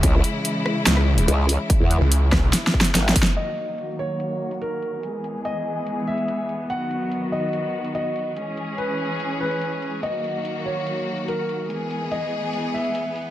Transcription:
Already playing: C#3 E3 G#3 E4
0.03 C#2, kick, closed hi-hat
0.24 closed hi-hat
0.45 closed hi-hat
0.66 cross-stick
0.87 C#2, snare, closed hi-hat
0.97 cross-stick
1.18 closed hi-hat
1.28 C#2, closed hi-hat
1.49 open hi-hat
1.70 kick, closed hi-hat
1.80 E2
1.91 closed hi-hat
2.01 C#2
2.12 closed hi-hat
2.32 kick, cross-stick, snare
2.43 B1
2.53 snare, closed hi-hat
2.67 snare
2.74 kick
2.81 snare, closed hi-hat
2.95 G#1, snare, closed hi-hat
3.09 snare
3.16 kick, open hi-hat
3.23 snare, closed hi-hat
3.37 D#3 F#3 A#3 F#4 D#5, closed hi-hat, crash
3.57 closed hi-hat
3.78 closed hi-hat
3.99 C#5
4.20 closed hi-hat
4.51 closed hi-hat
4.62 A#4, closed hi-hat
4.82 closed hi-hat
5.03 E3 G#3 B3 G#4, closed hi-hat
5.24 closed hi-hat
5.45 D#5, closed hi-hat
5.87 closed hi-hat
6.07 E5
6.18 closed hi-hat
6.28 closed hi-hat
6.49 closed hi-hat
6.70 D#3 F#3 F#4 F#5, closed hi-hat
6.91 closed hi-hat
7.12 closed hi-hat
7.32 D#5
7.53 closed hi-hat
7.84 closed hi-hat
7.95 D#5, closed hi-hat
8.16 closed hi-hat
8.37 E3 G#3 C#4 G#4, closed hi-hat
8.57 closed hi-hat
8.78 B4, closed hi-hat
9.20 closed hi-hat
9.41 B4
9.51 closed hi-hat
9.62 closed hi-hat
9.82 closed hi-hat
10.03 D#3 F#3 A#3 F#4 D#5, closed hi-hat
10.24 closed hi-hat
10.45 closed hi-hat
10.66 C#5
10.87 closed hi-hat
11.18 closed hi-hat
11.28 A#4, closed hi-hat
11.49 closed hi-hat
11.70 E3 G#3 B3 G#4, closed hi-hat
11.91 closed hi-hat
12.12 D#5, closed hi-hat
12.53 closed hi-hat
12.74 E5
12.85 closed hi-hat
12.95 closed hi-hat
13.16 closed hi-hat

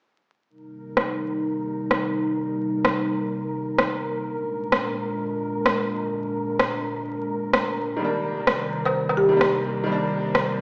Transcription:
0.50 C3 G3 D#4 A#4
0.97 cross-stick
1.91 cross-stick
2.85 cross-stick
3.78 cross-stick
4.25 A#2 G#3 D4
4.72 cross-stick
5.66 cross-stick
6.59 cross-stick
7.53 cross-stick
7.97 D#3 G3
8.01 C3 D#3 G3 A#3 D4
8.47 cross-stick
8.85 C5, low woodblock
9.09 low woodblock
9.17 G4
9.29 D#3 G3
9.34 A#3 D4
9.41 cross-stick
9.84 D#3 G3
9.88 A#3 C5
9.92 D4
10.35 cross-stick

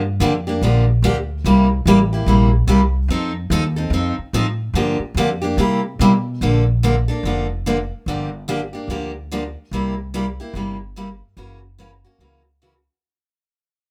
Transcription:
Already playing: G2
0.20 F2 D3 F3 A#3 D4 G4
0.47 A#3 D4 G4
0.62 A#1 D3 F3 A#3 D4 G4
1.02 D2 D3 F3 A#3 D4 G4
1.44 C2 C3 G3 A#3 E4 G4
1.86 A1 C3 G3 A#3 E4 G4
2.13 A#3 E4 G4
2.26 A#1 C3 G3 A#3 E4 G4
2.67 C2 C3 G3 A#3 E4 G4
3.08 F2 F3 C4 D#4 A4
3.50 D#2 F3 C4 D#4 A4
3.76 C4 D#4 A4
3.90 F2 F3 C4 D#4 A4
4.18 muted upright bass stroke
4.33 A2 F3 C4 D#4 A4
4.74 G2 D3 F3 A#3 D4 G4
4.99 muted upright bass stroke
5.14 F2 D3 F3 A#3 D4 G4
5.42 A#3 D4 G4
5.57 C3 G3 A#3 E4 G4
5.99 B2 C3 G3 A#3 E4 G4
6.41 A#1 D3 F3 A#3 D4 A4
6.83 D3 F3 A#3 D4 A4
7.08 A#3 D4 A4
7.23 F1 D3 F3 A#3 D4 A4
7.66 D3 F3 A#3 D4 A4
8.06 G1 D3 F3 A#3 D4 G4
8.48 D3 F3 A#3 D4 G4
8.73 A#3 D4 G4
8.88 D2 D3 F3 A#3 D4 G4
9.31 D3 F3 A#3 D4 G4
9.71 C2 C3 G3 A#3 E4 G4
10.14 C3 G3 A#3 E4 G4
10.40 A#3 E4 G4
10.54 G1 C3 G3 A#3 E4 G4
10.96 C3 G3 A#3 E4 G4
11.37 F#1 C#3 E3 A#3 C#4 F#4
11.78 C#3 E3 A#3 C#4 F#4
12.05 A#3 C#4 F#4
12.19 C#2 C#3 E3 A#3 C#4 F#4
12.62 C#3 E3 A#3 C#4 F#4

